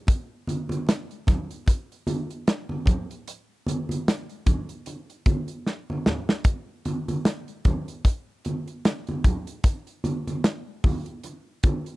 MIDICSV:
0, 0, Header, 1, 2, 480
1, 0, Start_track
1, 0, Tempo, 795756
1, 51, Time_signature, 4, 2, 24, 8
1, 7217, End_track
2, 0, Start_track
2, 0, Title_t, "Drums"
2, 42, Note_on_c, 9, 62, 37
2, 48, Note_on_c, 9, 42, 94
2, 49, Note_on_c, 9, 36, 109
2, 102, Note_off_c, 9, 62, 0
2, 109, Note_off_c, 9, 36, 0
2, 109, Note_off_c, 9, 42, 0
2, 286, Note_on_c, 9, 63, 77
2, 295, Note_on_c, 9, 42, 77
2, 347, Note_off_c, 9, 63, 0
2, 355, Note_off_c, 9, 42, 0
2, 418, Note_on_c, 9, 63, 75
2, 432, Note_on_c, 9, 42, 52
2, 478, Note_off_c, 9, 63, 0
2, 493, Note_off_c, 9, 42, 0
2, 522, Note_on_c, 9, 62, 36
2, 535, Note_on_c, 9, 38, 115
2, 535, Note_on_c, 9, 42, 103
2, 583, Note_off_c, 9, 62, 0
2, 595, Note_off_c, 9, 42, 0
2, 596, Note_off_c, 9, 38, 0
2, 668, Note_on_c, 9, 42, 36
2, 729, Note_off_c, 9, 42, 0
2, 766, Note_on_c, 9, 63, 72
2, 766, Note_on_c, 9, 64, 69
2, 771, Note_on_c, 9, 42, 69
2, 772, Note_on_c, 9, 36, 99
2, 776, Note_on_c, 9, 38, 36
2, 827, Note_off_c, 9, 63, 0
2, 827, Note_off_c, 9, 64, 0
2, 831, Note_off_c, 9, 42, 0
2, 832, Note_off_c, 9, 36, 0
2, 836, Note_off_c, 9, 38, 0
2, 909, Note_on_c, 9, 42, 52
2, 969, Note_off_c, 9, 42, 0
2, 1003, Note_on_c, 9, 62, 32
2, 1011, Note_on_c, 9, 36, 89
2, 1012, Note_on_c, 9, 42, 84
2, 1064, Note_off_c, 9, 62, 0
2, 1071, Note_off_c, 9, 36, 0
2, 1073, Note_off_c, 9, 42, 0
2, 1157, Note_on_c, 9, 42, 33
2, 1218, Note_off_c, 9, 42, 0
2, 1247, Note_on_c, 9, 62, 35
2, 1247, Note_on_c, 9, 63, 77
2, 1251, Note_on_c, 9, 42, 81
2, 1308, Note_off_c, 9, 62, 0
2, 1308, Note_off_c, 9, 63, 0
2, 1312, Note_off_c, 9, 42, 0
2, 1390, Note_on_c, 9, 42, 45
2, 1450, Note_off_c, 9, 42, 0
2, 1493, Note_on_c, 9, 42, 82
2, 1495, Note_on_c, 9, 38, 110
2, 1553, Note_off_c, 9, 42, 0
2, 1555, Note_off_c, 9, 38, 0
2, 1624, Note_on_c, 9, 63, 75
2, 1684, Note_off_c, 9, 63, 0
2, 1723, Note_on_c, 9, 62, 35
2, 1723, Note_on_c, 9, 64, 76
2, 1732, Note_on_c, 9, 36, 100
2, 1738, Note_on_c, 9, 42, 76
2, 1783, Note_off_c, 9, 62, 0
2, 1783, Note_off_c, 9, 64, 0
2, 1792, Note_off_c, 9, 36, 0
2, 1798, Note_off_c, 9, 42, 0
2, 1874, Note_on_c, 9, 42, 54
2, 1935, Note_off_c, 9, 42, 0
2, 1976, Note_on_c, 9, 42, 98
2, 2036, Note_off_c, 9, 42, 0
2, 2211, Note_on_c, 9, 62, 36
2, 2211, Note_on_c, 9, 63, 80
2, 2220, Note_on_c, 9, 42, 74
2, 2271, Note_off_c, 9, 62, 0
2, 2271, Note_off_c, 9, 63, 0
2, 2281, Note_off_c, 9, 42, 0
2, 2347, Note_on_c, 9, 63, 69
2, 2360, Note_on_c, 9, 42, 56
2, 2407, Note_off_c, 9, 63, 0
2, 2420, Note_off_c, 9, 42, 0
2, 2462, Note_on_c, 9, 38, 115
2, 2462, Note_on_c, 9, 42, 97
2, 2522, Note_off_c, 9, 42, 0
2, 2523, Note_off_c, 9, 38, 0
2, 2590, Note_on_c, 9, 42, 35
2, 2651, Note_off_c, 9, 42, 0
2, 2692, Note_on_c, 9, 63, 68
2, 2692, Note_on_c, 9, 64, 68
2, 2693, Note_on_c, 9, 42, 73
2, 2694, Note_on_c, 9, 36, 94
2, 2753, Note_off_c, 9, 42, 0
2, 2753, Note_off_c, 9, 63, 0
2, 2753, Note_off_c, 9, 64, 0
2, 2754, Note_off_c, 9, 36, 0
2, 2829, Note_on_c, 9, 42, 49
2, 2889, Note_off_c, 9, 42, 0
2, 2932, Note_on_c, 9, 42, 80
2, 2939, Note_on_c, 9, 62, 32
2, 2992, Note_off_c, 9, 42, 0
2, 2999, Note_off_c, 9, 62, 0
2, 3075, Note_on_c, 9, 42, 36
2, 3135, Note_off_c, 9, 42, 0
2, 3172, Note_on_c, 9, 42, 78
2, 3173, Note_on_c, 9, 36, 94
2, 3179, Note_on_c, 9, 62, 35
2, 3179, Note_on_c, 9, 63, 78
2, 3232, Note_off_c, 9, 42, 0
2, 3233, Note_off_c, 9, 36, 0
2, 3239, Note_off_c, 9, 62, 0
2, 3239, Note_off_c, 9, 63, 0
2, 3305, Note_on_c, 9, 42, 45
2, 3365, Note_off_c, 9, 42, 0
2, 3417, Note_on_c, 9, 38, 53
2, 3477, Note_off_c, 9, 38, 0
2, 3558, Note_on_c, 9, 63, 76
2, 3618, Note_off_c, 9, 63, 0
2, 3656, Note_on_c, 9, 38, 93
2, 3658, Note_on_c, 9, 62, 34
2, 3658, Note_on_c, 9, 64, 71
2, 3716, Note_off_c, 9, 38, 0
2, 3718, Note_off_c, 9, 62, 0
2, 3718, Note_off_c, 9, 64, 0
2, 3794, Note_on_c, 9, 38, 94
2, 3854, Note_off_c, 9, 38, 0
2, 3887, Note_on_c, 9, 42, 101
2, 3890, Note_on_c, 9, 36, 113
2, 3897, Note_on_c, 9, 62, 34
2, 3947, Note_off_c, 9, 42, 0
2, 3950, Note_off_c, 9, 36, 0
2, 3957, Note_off_c, 9, 62, 0
2, 4134, Note_on_c, 9, 42, 71
2, 4136, Note_on_c, 9, 62, 37
2, 4136, Note_on_c, 9, 63, 76
2, 4194, Note_off_c, 9, 42, 0
2, 4196, Note_off_c, 9, 62, 0
2, 4196, Note_off_c, 9, 63, 0
2, 4273, Note_on_c, 9, 63, 74
2, 4274, Note_on_c, 9, 42, 52
2, 4333, Note_off_c, 9, 63, 0
2, 4334, Note_off_c, 9, 42, 0
2, 4374, Note_on_c, 9, 42, 99
2, 4375, Note_on_c, 9, 38, 110
2, 4435, Note_off_c, 9, 38, 0
2, 4435, Note_off_c, 9, 42, 0
2, 4510, Note_on_c, 9, 42, 37
2, 4571, Note_off_c, 9, 42, 0
2, 4612, Note_on_c, 9, 42, 76
2, 4615, Note_on_c, 9, 36, 99
2, 4616, Note_on_c, 9, 62, 31
2, 4616, Note_on_c, 9, 63, 71
2, 4616, Note_on_c, 9, 64, 69
2, 4673, Note_off_c, 9, 42, 0
2, 4675, Note_off_c, 9, 36, 0
2, 4676, Note_off_c, 9, 62, 0
2, 4676, Note_off_c, 9, 63, 0
2, 4676, Note_off_c, 9, 64, 0
2, 4754, Note_on_c, 9, 42, 49
2, 4814, Note_off_c, 9, 42, 0
2, 4854, Note_on_c, 9, 36, 91
2, 4857, Note_on_c, 9, 42, 81
2, 4915, Note_off_c, 9, 36, 0
2, 4917, Note_off_c, 9, 42, 0
2, 5096, Note_on_c, 9, 42, 77
2, 5103, Note_on_c, 9, 63, 76
2, 5156, Note_off_c, 9, 42, 0
2, 5163, Note_off_c, 9, 63, 0
2, 5233, Note_on_c, 9, 42, 48
2, 5294, Note_off_c, 9, 42, 0
2, 5339, Note_on_c, 9, 42, 83
2, 5340, Note_on_c, 9, 38, 104
2, 5342, Note_on_c, 9, 62, 31
2, 5399, Note_off_c, 9, 42, 0
2, 5401, Note_off_c, 9, 38, 0
2, 5402, Note_off_c, 9, 62, 0
2, 5471, Note_on_c, 9, 42, 36
2, 5481, Note_on_c, 9, 63, 76
2, 5531, Note_off_c, 9, 42, 0
2, 5541, Note_off_c, 9, 63, 0
2, 5576, Note_on_c, 9, 36, 91
2, 5580, Note_on_c, 9, 42, 75
2, 5581, Note_on_c, 9, 64, 71
2, 5636, Note_off_c, 9, 36, 0
2, 5640, Note_off_c, 9, 42, 0
2, 5641, Note_off_c, 9, 64, 0
2, 5713, Note_on_c, 9, 42, 56
2, 5774, Note_off_c, 9, 42, 0
2, 5813, Note_on_c, 9, 42, 100
2, 5815, Note_on_c, 9, 36, 111
2, 5820, Note_on_c, 9, 62, 35
2, 5873, Note_off_c, 9, 42, 0
2, 5875, Note_off_c, 9, 36, 0
2, 5881, Note_off_c, 9, 62, 0
2, 5953, Note_on_c, 9, 42, 38
2, 6014, Note_off_c, 9, 42, 0
2, 6055, Note_on_c, 9, 63, 83
2, 6060, Note_on_c, 9, 42, 77
2, 6116, Note_off_c, 9, 63, 0
2, 6120, Note_off_c, 9, 42, 0
2, 6197, Note_on_c, 9, 63, 73
2, 6199, Note_on_c, 9, 42, 54
2, 6258, Note_off_c, 9, 63, 0
2, 6259, Note_off_c, 9, 42, 0
2, 6298, Note_on_c, 9, 42, 100
2, 6299, Note_on_c, 9, 38, 111
2, 6359, Note_off_c, 9, 38, 0
2, 6359, Note_off_c, 9, 42, 0
2, 6537, Note_on_c, 9, 46, 52
2, 6539, Note_on_c, 9, 36, 100
2, 6540, Note_on_c, 9, 62, 32
2, 6540, Note_on_c, 9, 63, 71
2, 6540, Note_on_c, 9, 64, 72
2, 6597, Note_off_c, 9, 46, 0
2, 6599, Note_off_c, 9, 36, 0
2, 6601, Note_off_c, 9, 62, 0
2, 6601, Note_off_c, 9, 63, 0
2, 6601, Note_off_c, 9, 64, 0
2, 6671, Note_on_c, 9, 42, 49
2, 6731, Note_off_c, 9, 42, 0
2, 6777, Note_on_c, 9, 42, 82
2, 6781, Note_on_c, 9, 62, 31
2, 6837, Note_off_c, 9, 42, 0
2, 6842, Note_off_c, 9, 62, 0
2, 7015, Note_on_c, 9, 42, 78
2, 7019, Note_on_c, 9, 36, 97
2, 7022, Note_on_c, 9, 62, 36
2, 7022, Note_on_c, 9, 63, 76
2, 7075, Note_off_c, 9, 42, 0
2, 7080, Note_off_c, 9, 36, 0
2, 7082, Note_off_c, 9, 62, 0
2, 7082, Note_off_c, 9, 63, 0
2, 7155, Note_on_c, 9, 42, 48
2, 7215, Note_off_c, 9, 42, 0
2, 7217, End_track
0, 0, End_of_file